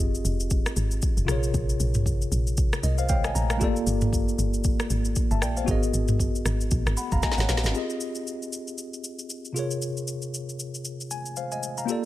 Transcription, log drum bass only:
0, 0, Header, 1, 2, 480
1, 0, Start_track
1, 0, Tempo, 517241
1, 1430, Time_signature, 4, 2, 24, 8
1, 11183, End_track
2, 0, Start_track
2, 0, Title_t, "Log drum bass"
2, 0, Program_c, 0, 39
2, 0, Note_on_c, 0, 29, 104
2, 215, Note_off_c, 0, 29, 0
2, 230, Note_on_c, 0, 29, 97
2, 597, Note_off_c, 0, 29, 0
2, 710, Note_on_c, 0, 32, 104
2, 942, Note_off_c, 0, 32, 0
2, 1089, Note_on_c, 0, 29, 88
2, 1184, Note_off_c, 0, 29, 0
2, 1190, Note_on_c, 0, 34, 98
2, 1422, Note_off_c, 0, 34, 0
2, 1431, Note_on_c, 0, 34, 108
2, 1663, Note_off_c, 0, 34, 0
2, 1670, Note_on_c, 0, 34, 104
2, 2135, Note_off_c, 0, 34, 0
2, 2150, Note_on_c, 0, 34, 99
2, 2517, Note_off_c, 0, 34, 0
2, 2630, Note_on_c, 0, 36, 91
2, 3095, Note_off_c, 0, 36, 0
2, 3111, Note_on_c, 0, 34, 90
2, 3350, Note_on_c, 0, 31, 106
2, 3364, Note_off_c, 0, 34, 0
2, 3583, Note_off_c, 0, 31, 0
2, 3590, Note_on_c, 0, 31, 113
2, 4055, Note_off_c, 0, 31, 0
2, 4070, Note_on_c, 0, 31, 97
2, 4437, Note_off_c, 0, 31, 0
2, 4550, Note_on_c, 0, 32, 96
2, 4783, Note_off_c, 0, 32, 0
2, 4929, Note_on_c, 0, 31, 92
2, 5029, Note_on_c, 0, 34, 91
2, 5043, Note_off_c, 0, 31, 0
2, 5262, Note_off_c, 0, 34, 0
2, 5270, Note_on_c, 0, 32, 119
2, 5502, Note_off_c, 0, 32, 0
2, 5509, Note_on_c, 0, 32, 104
2, 5974, Note_off_c, 0, 32, 0
2, 5990, Note_on_c, 0, 32, 104
2, 6222, Note_off_c, 0, 32, 0
2, 6232, Note_on_c, 0, 34, 98
2, 6363, Note_off_c, 0, 34, 0
2, 6369, Note_on_c, 0, 32, 100
2, 6466, Note_off_c, 0, 32, 0
2, 6608, Note_on_c, 0, 30, 90
2, 6706, Note_off_c, 0, 30, 0
2, 6849, Note_on_c, 0, 32, 94
2, 6943, Note_off_c, 0, 32, 0
2, 6949, Note_on_c, 0, 34, 94
2, 7084, Note_off_c, 0, 34, 0
2, 7089, Note_on_c, 0, 32, 97
2, 7186, Note_off_c, 0, 32, 0
2, 11183, End_track
0, 0, End_of_file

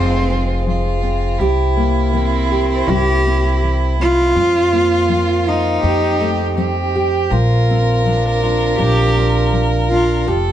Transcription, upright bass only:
0, 0, Header, 1, 2, 480
1, 0, Start_track
1, 0, Key_signature, -2, "major"
1, 0, Tempo, 739827
1, 907, Time_signature, 4, 2, 24, 8
1, 6825, End_track
2, 0, Start_track
2, 0, Title_t, "Upright bass"
2, 0, Program_c, 0, 32
2, 0, Note_on_c, 0, 29, 94
2, 880, Note_off_c, 0, 29, 0
2, 903, Note_on_c, 0, 36, 91
2, 1839, Note_off_c, 0, 36, 0
2, 1863, Note_on_c, 0, 36, 95
2, 2799, Note_off_c, 0, 36, 0
2, 2823, Note_on_c, 0, 41, 92
2, 3759, Note_off_c, 0, 41, 0
2, 3781, Note_on_c, 0, 41, 86
2, 4718, Note_off_c, 0, 41, 0
2, 4738, Note_on_c, 0, 34, 97
2, 5677, Note_off_c, 0, 34, 0
2, 5703, Note_on_c, 0, 34, 91
2, 6640, Note_off_c, 0, 34, 0
2, 6669, Note_on_c, 0, 29, 92
2, 6825, Note_off_c, 0, 29, 0
2, 6825, End_track
0, 0, End_of_file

